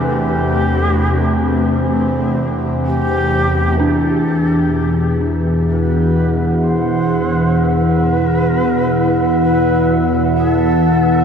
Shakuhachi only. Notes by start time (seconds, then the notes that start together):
0.06 G4
2.86 G4
3.79 A4
5.68 B4
6.63 C5
7.56 B4
9.42 B4
10.36 G#4
10.51 A4